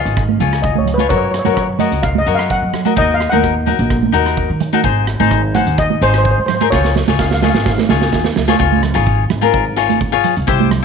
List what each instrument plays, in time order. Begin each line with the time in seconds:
Already playing: cavaquinho F4 G#4 C#5, steel pan F5
0.05 upright bass G#1, closed hi-hat
0.17 kick, cross-stick, closed hi-hat
0.29 high conga
0.40 upright bass C#2, cavaquinho F4 G#4 C#5, closed hi-hat, low conga
0.53 cross-stick, closed hi-hat
0.62 steel pan D#5, kick, closed hi-hat
0.75 upright bass C#2, steel pan C#5, high conga
0.85 closed hi-hat, low conga
0.94 steel pan B4, high conga
0.99 cavaquinho F4 G#4 C#5, closed hi-hat
1.09 upright bass F#2, cavaquinho F#4 A#4 C#5, steel pan C#5, kick, closed hi-hat
1.17 steel pan C#5
1.24 steel pan C#5
1.31 steel pan C#5, cross-stick, closed hi-hat
1.39 steel pan C#5
1.45 upright bass F#2, cavaquinho F#4 A#4 C#5, steel pan C#5, closed hi-hat, high conga
1.54 steel pan C#5, kick, cross-stick, closed hi-hat
1.62 steel pan C#5
1.79 cavaquinho F#4 A#4 C#5, steel pan D#5, closed hi-hat, high conga, low conga
1.92 upright bass C#2, closed hi-hat
2.03 steel pan F5, kick, cross-stick, closed hi-hat
2.15 steel pan D#5, high conga
2.26 upright bass F#2, cavaquinho F#4 A#4 C#5, closed hi-hat
2.35 steel pan F5
2.39 cross-stick, closed hi-hat
2.50 steel pan F#5, kick, closed hi-hat
2.62 upright bass F#3
2.73 cross-stick, closed hi-hat, low conga
2.85 cavaquinho F#4 A#4 D#5, closed hi-hat, high conga
2.96 upright bass D#2, cavaquinho D#4 F#4 A#4, steel pan D#5, kick, closed hi-hat
3.14 steel pan F5
3.20 cross-stick, closed hi-hat
3.29 upright bass D#2, cavaquinho D#4 F#4 A#4, steel pan F#5, closed hi-hat, high conga
3.44 kick, cross-stick, closed hi-hat
3.66 cavaquinho D#4 F#4 A#4, closed hi-hat, high conga, low conga
3.79 upright bass A#1, closed hi-hat
3.90 kick, cross-stick, closed hi-hat
4.03 high conga
4.12 upright bass D#2, cavaquinho D#4 F#4 A#4, closed hi-hat
4.26 cross-stick, closed hi-hat
4.37 kick, closed hi-hat
4.50 upright bass D#3
4.60 closed hi-hat, low conga
4.73 cavaquinho D#4 F#4 A#4, closed hi-hat, high conga
4.83 upright bass G#1, cavaquinho D#4 G#4 C5, kick, closed hi-hat
5.07 cross-stick, closed hi-hat
5.20 upright bass G#1, cavaquinho D#4 G#4 C5, closed hi-hat, high conga
5.31 kick, cross-stick, closed hi-hat
5.54 cavaquinho D#4 G#4 C5, steel pan F#5, closed hi-hat, high conga, low conga
5.67 upright bass D#2, closed hi-hat
5.78 steel pan D#5, kick, cross-stick, closed hi-hat
5.90 high conga
6.01 upright bass G#1, cavaquinho D#4 G#4 C5, steel pan C5, closed hi-hat
6.10 steel pan C5
6.14 cross-stick, closed hi-hat
6.18 steel pan C5
6.24 steel pan C5, kick, closed hi-hat
6.31 steel pan C5
6.38 upright bass G#2, steel pan C5
6.46 steel pan C5, cross-stick, closed hi-hat, low conga
6.54 steel pan C5
6.61 cavaquinho D#4 G#4 A#4, closed hi-hat, high conga
6.70 upright bass C#2, cavaquinho F4 G#4 C#5, steel pan C#5, kick, snare
6.84 snare
6.96 snare, low conga
7.08 upright bass C#2, cavaquinho F4 G#4 C#5, snare, high conga
7.19 steel pan F5, kick, snare
7.27 steel pan F5
7.31 steel pan F5, snare
7.41 cavaquinho F4 G#4 C#5, steel pan F5, snare, high conga, low conga
7.50 steel pan F5
7.54 upright bass G#1, steel pan F5, snare
7.64 steel pan F5, kick, snare
7.72 steel pan F5
7.78 snare, high conga
7.89 upright bass C#2, cavaquinho F4 G#4 C#5, snare, low conga
8.02 snare
8.13 upright bass D#2, kick, snare
8.24 snare
8.36 upright bass C#2, snare, low conga
8.48 cavaquinho F4 G#4 C#5, snare, high conga
8.59 upright bass C#2, cavaquinho F4 G#4 C#5, kick, closed hi-hat
8.72 high conga
8.83 cross-stick, closed hi-hat, low conga
8.94 upright bass G#1, cavaquinho F4 G#4 C#5, cross-stick, closed hi-hat
9.06 kick, closed hi-hat
9.30 upright bass G#1, cross-stick, closed hi-hat, low conga
9.41 cavaquinho F4 G#4 A#4, closed hi-hat, high conga
9.53 kick, closed hi-hat
9.76 cavaquinho F4 G#4 C#5, cross-stick, closed hi-hat
9.90 closed hi-hat, high conga
10.01 kick, closed hi-hat
10.12 cavaquinho F4 G#4 C#5
10.24 closed hi-hat, low conga
10.37 upright bass C#2, closed hi-hat
10.47 upright bass C2, cavaquinho E4 G4 C5, kick, closed hi-hat
10.60 high conga
10.71 cross-stick, closed hi-hat, low conga